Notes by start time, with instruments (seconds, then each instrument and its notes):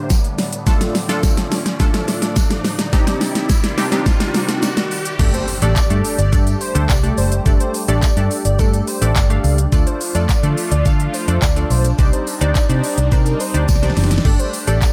Already playing: supersaw synth A2 D3 G3 D5, analog polysynth A3 D4 G4 C5, riser
0.10 kick, snare, tambourine, shaker
0.24 closed hi-hat, shaker
0.38 snare, open hi-hat, tambourine, shaker
0.53 closed hi-hat, tambourine, shaker
0.66 supersaw synth F3 D5, analog polysynth A3 D4 F4 A4, kick, snare, tambourine, shaker
0.81 snare, closed hi-hat, shaker
0.95 snare, open hi-hat, tambourine, shaker
1.09 analog polysynth A3 D4 F4 A4, snare, closed hi-hat, tambourine, shaker
1.23 kick, snare, tambourine, shaker
1.37 snare, closed hi-hat, shaker
1.52 snare, open hi-hat, tambourine, shaker
1.66 snare, closed hi-hat, shaker
1.79 analog polysynth A3 D4 F4 A4, kick, snare, tambourine, shaker
1.94 snare, closed hi-hat, tambourine, shaker
2.08 snare, open hi-hat, tambourine, shaker
2.22 snare, closed hi-hat, shaker
2.36 kick, snare, tambourine, shaker
2.50 snare, closed hi-hat, shaker
2.65 snare, open hi-hat, tambourine, shaker
2.79 snare, closed hi-hat, tambourine, shaker
2.93 supersaw synth C3 D#3 G3, analog polysynth C4 D4 D#4 G4, kick, snare, tambourine, shaker
3.07 snare, closed hi-hat, shaker
3.21 snare, open hi-hat, tambourine, shaker
3.35 snare, closed hi-hat, tambourine, shaker
3.49 kick, snare, tambourine, shaker
3.64 snare, closed hi-hat, shaker
3.78 analog polysynth C4 D4 D#4 G4, snare, open hi-hat, tambourine, shaker
3.92 analog polysynth C4 D4 D#4 G4, snare, closed hi-hat, tambourine, shaker
4.06 kick, snare, tambourine, shaker
4.20 snare, closed hi-hat, tambourine, shaker
4.34 snare, open hi-hat, tambourine, shaker
4.49 snare, closed hi-hat, shaker
4.62 snare, tambourine, shaker
4.77 snare, closed hi-hat, shaker
4.91 open hi-hat, tambourine, shaker
5.05 closed hi-hat, tambourine, shaker
5.19 fingered electric bass G1, supersaw synth G3 A3 D4 G4, analog polysynth A3 D4 G4 A4 D5, kick, crash, tambourine, impact, shaker
5.34 digital synth lead C5, closed hi-hat, shaker
5.48 open hi-hat, tambourine, shaker
5.62 fingered electric bass A1, analog polysynth A3 D4 G4 A4 D5, digital synth lead D5, closed hi-hat, tambourine, shaker
5.76 digital synth lead D5, kick, clap, tambourine, shaker
5.90 fingered electric bass G2, analog polysynth A3 D4 G4 A4 D5, closed hi-hat, shaker
6.05 open hi-hat, tambourine, shaker
6.18 fingered electric bass G1, digital synth lead D5, closed hi-hat, tambourine, shaker
6.32 fingered electric bass G2, analog polysynth A3 D4 G4 A4 D5, kick, tambourine, shaker
6.47 closed hi-hat, tambourine, shaker
6.61 digital synth lead C5, open hi-hat, tambourine, shaker
6.75 fingered electric bass D2, analog polysynth A3 D4 G4 A4 C5, closed hi-hat, shaker
6.89 fingered electric bass C2, digital synth lead D5, kick, clap, tambourine, shaker
7.03 analog polysynth A3 D4 G4 A4 D5, closed hi-hat, shaker
7.17 fingered electric bass F#1, digital synth lead C5, open hi-hat, tambourine, shaker
7.32 closed hi-hat, shaker
7.46 fingered electric bass G1, analog polysynth A3 D4 G4 A4 D5, kick, tambourine, shaker
7.60 digital synth lead C5, closed hi-hat, shaker
7.74 open hi-hat, tambourine, shaker
7.88 fingered electric bass A1, analog polysynth A3 D4 G4 A4 D5, digital synth lead D5, closed hi-hat, tambourine, shaker
8.02 digital synth lead D5, kick, clap, tambourine, shaker
8.17 fingered electric bass G2, analog polysynth A3 D4 G4 A4 D5, closed hi-hat, shaker
8.31 open hi-hat, tambourine, shaker
8.45 fingered electric bass G1, digital synth lead D5, closed hi-hat, shaker
8.59 fingered electric bass G2, analog polysynth A3 D4 G4 A4 D5, digital synth lead A4, kick, tambourine, shaker
8.74 closed hi-hat, tambourine, shaker
8.87 digital synth lead C5, open hi-hat, tambourine, shaker
9.01 fingered electric bass A1, analog polysynth A3 D4 G4 A4 D5, closed hi-hat, shaker
9.16 fingered electric bass G1, digital synth lead D5, kick, clap, tambourine, shaker
9.30 analog polysynth A3 D4 G4 A4 F5, closed hi-hat, shaker
9.44 fingered electric bass C#2, open hi-hat, tambourine, shaker
9.58 closed hi-hat, shaker
9.72 fingered electric bass D2, supersaw synth F3 A3 F4, analog polysynth A3 D4 F4 A4 D5, kick, tambourine, shaker
9.87 digital synth lead C5, closed hi-hat, shaker
10.01 open hi-hat, tambourine, shaker
10.15 fingered electric bass F2, analog polysynth A3 D4 F4 A4 D5, digital synth lead D5, closed hi-hat, tambourine, shaker
10.29 digital synth lead D5, muted fingered electric bass stroke, kick, clap, tambourine, shaker
10.43 fingered electric bass D3, analog polysynth A3 D4 F4 A4 D5, closed hi-hat, shaker
10.58 open hi-hat, tambourine, shaker
10.71 fingered electric bass D2, digital synth lead D5, closed hi-hat, shaker
10.86 fingered electric bass D3, analog polysynth A3 D4 F4 A4 F5, kick, tambourine, shaker
11.00 closed hi-hat, shaker
11.14 digital synth lead C5, open hi-hat, tambourine, shaker
11.28 fingered electric bass F2, analog polysynth A3 D4 F4 A4 D5, closed hi-hat, shaker
11.42 fingered electric bass D2, digital synth lead D5, kick, clap, tambourine, shaker
11.56 analog polysynth A3 D4 F4 A4 D5, closed hi-hat, shaker
11.70 fingered electric bass B1, digital synth lead C5, open hi-hat, tambourine, shaker
11.85 closed hi-hat, tambourine, shaker
11.98 fingered electric bass C2, supersaw synth G3 C4 D#4, analog polysynth D4 D#4 G4 C5 D5, kick, tambourine, shaker
12.13 digital synth lead C5, closed hi-hat, shaker
12.27 open hi-hat, tambourine, shaker
12.41 fingered electric bass D2, analog polysynth D4 D#4 G4 C5 D5, digital synth lead D5, closed hi-hat, shaker
12.55 digital synth lead D5, kick, clap, tambourine, shaker
12.69 fingered electric bass C3, analog polysynth D4 D#4 G4 C5 D5, closed hi-hat, shaker
12.84 open hi-hat, tambourine, shaker
12.98 fingered electric bass C2, digital synth lead D5, closed hi-hat, shaker
13.12 fingered electric bass C3, analog polysynth D4 D#4 G4 C5 D5, digital synth lead A#4, kick, tambourine, shaker
13.26 closed hi-hat, tambourine, shaker
13.40 digital synth lead C5, open hi-hat, tambourine, shaker
13.54 fingered electric bass D2, analog polysynth D4 D#4 G4 C5 D5, closed hi-hat, shaker
13.68 fingered electric bass C2, digital synth lead D5, kick, snare, tambourine, shaker
13.76 snare
13.82 analog polysynth D4 D#4 G4 C5 D5, snare, closed hi-hat, shaker
13.90 snare
13.96 fingered electric bass F#1, snare, open hi-hat, tambourine, shaker
14.04 snare
14.11 snare, closed hi-hat, tambourine, shaker
14.18 snare
14.25 fingered electric bass G1, analog polysynth A3 D4 G4 A4 D5, supersaw synth A3 G4, kick, crash, tambourine
14.39 digital synth lead C5, closed hi-hat, shaker
14.53 open hi-hat, tambourine, shaker
14.67 fingered electric bass A1, analog polysynth A3 D4 G4 A4 D5, digital synth lead D5, closed hi-hat, tambourine, shaker
14.82 digital synth lead D5, kick, clap, tambourine, shaker